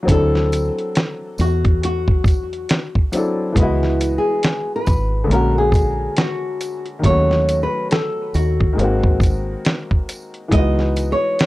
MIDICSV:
0, 0, Header, 1, 5, 480
1, 0, Start_track
1, 0, Tempo, 869565
1, 45, Time_signature, 4, 2, 24, 8
1, 6326, End_track
2, 0, Start_track
2, 0, Title_t, "Nylon-string guitar"
2, 0, Program_c, 0, 24
2, 56, Note_on_c, 0, 69, 120
2, 508, Note_off_c, 0, 69, 0
2, 777, Note_on_c, 0, 66, 101
2, 1013, Note_off_c, 0, 66, 0
2, 1019, Note_on_c, 0, 66, 102
2, 1710, Note_off_c, 0, 66, 0
2, 1991, Note_on_c, 0, 64, 88
2, 2307, Note_off_c, 0, 64, 0
2, 2308, Note_on_c, 0, 68, 86
2, 2624, Note_off_c, 0, 68, 0
2, 2626, Note_on_c, 0, 71, 85
2, 2914, Note_off_c, 0, 71, 0
2, 2939, Note_on_c, 0, 70, 97
2, 3078, Note_off_c, 0, 70, 0
2, 3080, Note_on_c, 0, 68, 80
2, 3415, Note_on_c, 0, 66, 84
2, 3421, Note_off_c, 0, 68, 0
2, 3770, Note_off_c, 0, 66, 0
2, 3893, Note_on_c, 0, 73, 109
2, 4209, Note_off_c, 0, 73, 0
2, 4212, Note_on_c, 0, 71, 89
2, 4368, Note_off_c, 0, 71, 0
2, 4370, Note_on_c, 0, 69, 85
2, 4606, Note_on_c, 0, 66, 79
2, 4615, Note_off_c, 0, 69, 0
2, 5063, Note_off_c, 0, 66, 0
2, 5811, Note_on_c, 0, 75, 114
2, 6137, Note_off_c, 0, 75, 0
2, 6139, Note_on_c, 0, 73, 100
2, 6326, Note_off_c, 0, 73, 0
2, 6326, End_track
3, 0, Start_track
3, 0, Title_t, "Upright piano"
3, 0, Program_c, 1, 0
3, 0, Control_c, 1, 64, 127
3, 15, Note_on_c, 1, 54, 65
3, 29, Note_on_c, 1, 60, 64
3, 41, Note_on_c, 1, 62, 58
3, 51, Control_c, 1, 64, 0
3, 55, Note_on_c, 1, 64, 60
3, 70, Note_on_c, 1, 69, 78
3, 138, Control_c, 1, 64, 127
3, 1688, Note_off_c, 1, 54, 0
3, 1695, Note_off_c, 1, 60, 0
3, 1701, Note_off_c, 1, 62, 0
3, 1708, Note_off_c, 1, 64, 0
3, 1715, Note_off_c, 1, 69, 0
3, 1722, Note_on_c, 1, 54, 58
3, 1728, Note_on_c, 1, 60, 52
3, 1736, Note_on_c, 1, 62, 54
3, 1743, Note_on_c, 1, 64, 53
3, 1751, Note_on_c, 1, 69, 57
3, 1944, Note_on_c, 1, 52, 66
3, 1957, Note_on_c, 1, 56, 57
3, 1964, Note_off_c, 1, 54, 0
3, 1966, Note_off_c, 1, 60, 0
3, 1971, Note_off_c, 1, 62, 0
3, 1971, Control_c, 1, 64, 0
3, 1971, Note_on_c, 1, 59, 62
3, 1974, Note_off_c, 1, 64, 0
3, 1978, Note_off_c, 1, 69, 0
3, 1984, Note_on_c, 1, 75, 57
3, 1999, Note_on_c, 1, 66, 71
3, 2051, Control_c, 1, 64, 127
3, 2893, Note_on_c, 1, 50, 66
3, 2895, Note_off_c, 1, 52, 0
3, 2898, Note_off_c, 1, 56, 0
3, 2906, Note_on_c, 1, 56, 54
3, 2909, Note_off_c, 1, 59, 0
3, 2916, Note_off_c, 1, 75, 0
3, 2920, Note_on_c, 1, 58, 58
3, 2923, Note_off_c, 1, 66, 0
3, 2933, Control_c, 1, 64, 0
3, 2935, Note_on_c, 1, 61, 56
3, 2947, Note_on_c, 1, 66, 75
3, 3017, Control_c, 1, 64, 127
3, 3849, Note_off_c, 1, 50, 0
3, 3856, Note_off_c, 1, 56, 0
3, 3859, Note_on_c, 1, 51, 61
3, 3863, Note_off_c, 1, 58, 0
3, 3871, Note_off_c, 1, 61, 0
3, 3874, Note_on_c, 1, 54, 58
3, 3877, Note_off_c, 1, 66, 0
3, 3887, Note_on_c, 1, 57, 59
3, 3892, Control_c, 1, 64, 0
3, 3899, Note_on_c, 1, 61, 53
3, 3913, Note_on_c, 1, 66, 74
3, 3997, Control_c, 1, 64, 127
3, 4809, Note_off_c, 1, 51, 0
3, 4817, Note_on_c, 1, 51, 62
3, 4820, Note_off_c, 1, 54, 0
3, 4827, Note_off_c, 1, 57, 0
3, 4831, Note_on_c, 1, 56, 58
3, 4833, Note_off_c, 1, 61, 0
3, 4840, Note_off_c, 1, 66, 0
3, 4845, Note_on_c, 1, 58, 62
3, 4853, Control_c, 1, 64, 0
3, 4858, Note_on_c, 1, 60, 60
3, 4873, Note_on_c, 1, 66, 75
3, 4942, Control_c, 1, 64, 127
3, 5772, Note_off_c, 1, 51, 0
3, 5779, Note_off_c, 1, 56, 0
3, 5786, Note_off_c, 1, 58, 0
3, 5786, Note_on_c, 1, 52, 65
3, 5792, Note_off_c, 1, 60, 0
3, 5800, Note_off_c, 1, 66, 0
3, 5800, Note_on_c, 1, 56, 58
3, 5812, Control_c, 1, 64, 0
3, 5813, Note_on_c, 1, 59, 56
3, 5826, Note_on_c, 1, 63, 57
3, 5840, Note_on_c, 1, 66, 69
3, 5904, Control_c, 1, 64, 127
3, 6326, Note_off_c, 1, 52, 0
3, 6326, Note_off_c, 1, 56, 0
3, 6326, Note_off_c, 1, 59, 0
3, 6326, Note_off_c, 1, 63, 0
3, 6326, Note_off_c, 1, 66, 0
3, 6326, End_track
4, 0, Start_track
4, 0, Title_t, "Fingered electric bass"
4, 0, Program_c, 2, 33
4, 44, Note_on_c, 2, 38, 117
4, 384, Note_off_c, 2, 38, 0
4, 769, Note_on_c, 2, 40, 92
4, 1465, Note_off_c, 2, 40, 0
4, 1966, Note_on_c, 2, 37, 96
4, 2305, Note_off_c, 2, 37, 0
4, 2690, Note_on_c, 2, 32, 82
4, 2901, Note_off_c, 2, 32, 0
4, 2925, Note_on_c, 2, 34, 99
4, 3351, Note_off_c, 2, 34, 0
4, 3885, Note_on_c, 2, 39, 101
4, 4225, Note_off_c, 2, 39, 0
4, 4608, Note_on_c, 2, 39, 83
4, 4847, Note_on_c, 2, 32, 104
4, 4855, Note_off_c, 2, 39, 0
4, 5272, Note_off_c, 2, 32, 0
4, 5805, Note_on_c, 2, 37, 108
4, 6145, Note_off_c, 2, 37, 0
4, 6326, End_track
5, 0, Start_track
5, 0, Title_t, "Drums"
5, 44, Note_on_c, 9, 36, 113
5, 48, Note_on_c, 9, 42, 94
5, 99, Note_off_c, 9, 36, 0
5, 104, Note_off_c, 9, 42, 0
5, 195, Note_on_c, 9, 38, 35
5, 250, Note_off_c, 9, 38, 0
5, 288, Note_on_c, 9, 54, 52
5, 293, Note_on_c, 9, 42, 75
5, 344, Note_off_c, 9, 54, 0
5, 348, Note_off_c, 9, 42, 0
5, 433, Note_on_c, 9, 42, 32
5, 489, Note_off_c, 9, 42, 0
5, 527, Note_on_c, 9, 42, 70
5, 535, Note_on_c, 9, 38, 108
5, 582, Note_off_c, 9, 42, 0
5, 590, Note_off_c, 9, 38, 0
5, 763, Note_on_c, 9, 54, 59
5, 772, Note_on_c, 9, 42, 58
5, 818, Note_off_c, 9, 54, 0
5, 827, Note_off_c, 9, 42, 0
5, 909, Note_on_c, 9, 36, 87
5, 909, Note_on_c, 9, 42, 37
5, 964, Note_off_c, 9, 42, 0
5, 965, Note_off_c, 9, 36, 0
5, 1012, Note_on_c, 9, 42, 74
5, 1068, Note_off_c, 9, 42, 0
5, 1147, Note_on_c, 9, 36, 98
5, 1202, Note_off_c, 9, 36, 0
5, 1238, Note_on_c, 9, 36, 100
5, 1246, Note_on_c, 9, 54, 45
5, 1257, Note_on_c, 9, 42, 57
5, 1293, Note_off_c, 9, 36, 0
5, 1301, Note_off_c, 9, 54, 0
5, 1312, Note_off_c, 9, 42, 0
5, 1396, Note_on_c, 9, 42, 35
5, 1451, Note_off_c, 9, 42, 0
5, 1486, Note_on_c, 9, 42, 81
5, 1495, Note_on_c, 9, 38, 114
5, 1541, Note_off_c, 9, 42, 0
5, 1550, Note_off_c, 9, 38, 0
5, 1630, Note_on_c, 9, 36, 85
5, 1685, Note_off_c, 9, 36, 0
5, 1725, Note_on_c, 9, 54, 77
5, 1728, Note_on_c, 9, 42, 75
5, 1781, Note_off_c, 9, 54, 0
5, 1783, Note_off_c, 9, 42, 0
5, 1964, Note_on_c, 9, 36, 100
5, 1969, Note_on_c, 9, 42, 90
5, 2019, Note_off_c, 9, 36, 0
5, 2024, Note_off_c, 9, 42, 0
5, 2114, Note_on_c, 9, 38, 34
5, 2169, Note_off_c, 9, 38, 0
5, 2211, Note_on_c, 9, 54, 51
5, 2213, Note_on_c, 9, 42, 76
5, 2266, Note_off_c, 9, 54, 0
5, 2268, Note_off_c, 9, 42, 0
5, 2445, Note_on_c, 9, 42, 74
5, 2454, Note_on_c, 9, 38, 108
5, 2500, Note_off_c, 9, 42, 0
5, 2509, Note_off_c, 9, 38, 0
5, 2685, Note_on_c, 9, 54, 59
5, 2689, Note_on_c, 9, 36, 82
5, 2691, Note_on_c, 9, 42, 60
5, 2740, Note_off_c, 9, 54, 0
5, 2744, Note_off_c, 9, 36, 0
5, 2746, Note_off_c, 9, 42, 0
5, 2932, Note_on_c, 9, 42, 66
5, 2987, Note_off_c, 9, 42, 0
5, 3158, Note_on_c, 9, 36, 94
5, 3167, Note_on_c, 9, 54, 45
5, 3175, Note_on_c, 9, 42, 60
5, 3213, Note_off_c, 9, 36, 0
5, 3222, Note_off_c, 9, 54, 0
5, 3230, Note_off_c, 9, 42, 0
5, 3403, Note_on_c, 9, 42, 77
5, 3412, Note_on_c, 9, 38, 115
5, 3459, Note_off_c, 9, 42, 0
5, 3467, Note_off_c, 9, 38, 0
5, 3647, Note_on_c, 9, 42, 67
5, 3648, Note_on_c, 9, 54, 74
5, 3702, Note_off_c, 9, 42, 0
5, 3703, Note_off_c, 9, 54, 0
5, 3785, Note_on_c, 9, 42, 33
5, 3840, Note_off_c, 9, 42, 0
5, 3884, Note_on_c, 9, 36, 107
5, 3887, Note_on_c, 9, 42, 83
5, 3939, Note_off_c, 9, 36, 0
5, 3942, Note_off_c, 9, 42, 0
5, 4035, Note_on_c, 9, 38, 33
5, 4091, Note_off_c, 9, 38, 0
5, 4132, Note_on_c, 9, 54, 55
5, 4133, Note_on_c, 9, 42, 70
5, 4187, Note_off_c, 9, 54, 0
5, 4188, Note_off_c, 9, 42, 0
5, 4366, Note_on_c, 9, 42, 78
5, 4375, Note_on_c, 9, 38, 105
5, 4421, Note_off_c, 9, 42, 0
5, 4430, Note_off_c, 9, 38, 0
5, 4605, Note_on_c, 9, 54, 56
5, 4611, Note_on_c, 9, 42, 56
5, 4660, Note_off_c, 9, 54, 0
5, 4667, Note_off_c, 9, 42, 0
5, 4749, Note_on_c, 9, 36, 85
5, 4805, Note_off_c, 9, 36, 0
5, 4853, Note_on_c, 9, 42, 72
5, 4908, Note_off_c, 9, 42, 0
5, 4987, Note_on_c, 9, 36, 95
5, 5043, Note_off_c, 9, 36, 0
5, 5079, Note_on_c, 9, 36, 94
5, 5085, Note_on_c, 9, 54, 49
5, 5097, Note_on_c, 9, 42, 60
5, 5134, Note_off_c, 9, 36, 0
5, 5140, Note_off_c, 9, 54, 0
5, 5152, Note_off_c, 9, 42, 0
5, 5326, Note_on_c, 9, 42, 72
5, 5335, Note_on_c, 9, 38, 121
5, 5381, Note_off_c, 9, 42, 0
5, 5390, Note_off_c, 9, 38, 0
5, 5470, Note_on_c, 9, 36, 80
5, 5526, Note_off_c, 9, 36, 0
5, 5569, Note_on_c, 9, 42, 67
5, 5569, Note_on_c, 9, 54, 72
5, 5624, Note_off_c, 9, 42, 0
5, 5624, Note_off_c, 9, 54, 0
5, 5707, Note_on_c, 9, 42, 31
5, 5763, Note_off_c, 9, 42, 0
5, 5804, Note_on_c, 9, 36, 95
5, 5808, Note_on_c, 9, 42, 84
5, 5859, Note_off_c, 9, 36, 0
5, 5864, Note_off_c, 9, 42, 0
5, 5955, Note_on_c, 9, 38, 35
5, 6011, Note_off_c, 9, 38, 0
5, 6051, Note_on_c, 9, 54, 52
5, 6054, Note_on_c, 9, 42, 68
5, 6106, Note_off_c, 9, 54, 0
5, 6109, Note_off_c, 9, 42, 0
5, 6288, Note_on_c, 9, 42, 72
5, 6296, Note_on_c, 9, 38, 111
5, 6326, Note_off_c, 9, 38, 0
5, 6326, Note_off_c, 9, 42, 0
5, 6326, End_track
0, 0, End_of_file